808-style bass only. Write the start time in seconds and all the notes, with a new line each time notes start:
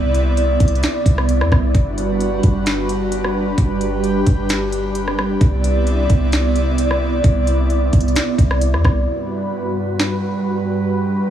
Already playing: C2
0.60 C2
1.06 C2
1.40 E2
1.52 C2
1.75 G1
2.44 G1
3.58 G1
4.27 G1
5.41 C2
6.10 C2
7.24 C2
7.93 C2
8.39 C2
8.73 E2
8.85 C2